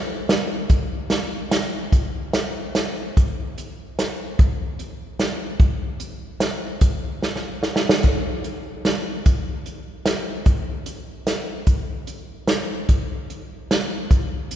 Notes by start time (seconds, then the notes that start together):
0.29 snare, closed hi-hat
0.69 kick, closed hi-hat
1.10 snare, closed hi-hat
1.51 snare, closed hi-hat
1.92 kick, closed hi-hat
2.33 snare, closed hi-hat
2.75 snare, closed hi-hat
3.17 kick, closed hi-hat
3.58 closed hi-hat
3.99 snare, closed hi-hat
4.39 kick, closed hi-hat
4.79 closed hi-hat
5.19 snare, closed hi-hat
5.60 kick, closed hi-hat
6.00 closed hi-hat
6.40 snare, closed hi-hat
6.81 kick, closed hi-hat
7.22 snare
7.36 snare
7.63 snare
7.76 snare
7.89 snare
8.03 kick, closed hi-hat
8.44 closed hi-hat
8.85 snare, closed hi-hat
9.26 kick, closed hi-hat
9.66 closed hi-hat
10.06 snare, closed hi-hat
10.46 kick, closed hi-hat
10.86 closed hi-hat
11.27 snare, closed hi-hat
11.67 kick, closed hi-hat
12.07 closed hi-hat
12.47 snare, closed hi-hat
12.89 kick, closed hi-hat
13.30 closed hi-hat
13.71 snare, closed hi-hat
14.11 kick, closed hi-hat
14.51 closed hi-hat